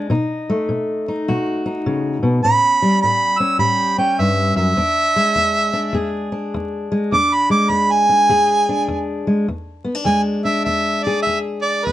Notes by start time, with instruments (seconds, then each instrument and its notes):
Already playing: steel-string acoustic guitar D4
0.10 steel-string acoustic guitar B2 D#4
0.49 steel-string acoustic guitar A3
0.69 steel-string acoustic guitar B2
1.08 steel-string acoustic guitar D#4
1.28 steel-string acoustic guitar B2 F#4
1.66 steel-string acoustic guitar D#4
1.86 steel-string acoustic guitar C#3
2.23 steel-string acoustic guitar B2
2.44 steel-string acoustic guitar A2 C#4, harmonica B5
2.82 steel-string acoustic guitar G3
3.02 steel-string acoustic guitar A2, harmonica B5
3.39 steel-string acoustic guitar C#4, harmonica E6
3.59 steel-string acoustic guitar A2 G4, harmonica B5
3.98 steel-string acoustic guitar C#4, harmonica G5
4.19 steel-string acoustic guitar G2, harmonica E5
4.56 steel-string acoustic guitar F#2, harmonica E5
4.77 steel-string acoustic guitar E2 D4
5.16 steel-string acoustic guitar G#3
5.35 steel-string acoustic guitar E2
5.73 steel-string acoustic guitar D4
5.93 steel-string acoustic guitar E2 G#4
6.32 steel-string acoustic guitar D4
6.54 steel-string acoustic guitar E2
6.92 steel-string acoustic guitar G#3
7.12 steel-string acoustic guitar E2 D4, harmonica D6
7.34 harmonica B5
7.50 steel-string acoustic guitar G#3, harmonica D6
7.69 steel-string acoustic guitar E2, harmonica B5
7.92 harmonica G#5
8.09 steel-string acoustic guitar D4
8.29 steel-string acoustic guitar E2 G#4
8.69 steel-string acoustic guitar D4
8.88 steel-string acoustic guitar E2
9.27 steel-string acoustic guitar G#3
9.48 steel-string acoustic guitar E2
9.84 steel-string acoustic guitar B3
9.95 steel-string acoustic guitar D4
10.05 steel-string acoustic guitar E2 G#3, harmonica G#5
10.45 steel-string acoustic guitar D4, harmonica E5
10.65 steel-string acoustic guitar E2, harmonica E5
11.03 steel-string acoustic guitar G#4, harmonica D5
11.22 harmonica E5
11.27 steel-string acoustic guitar E2
11.62 harmonica D5
11.85 steel-string acoustic guitar E2, harmonica B4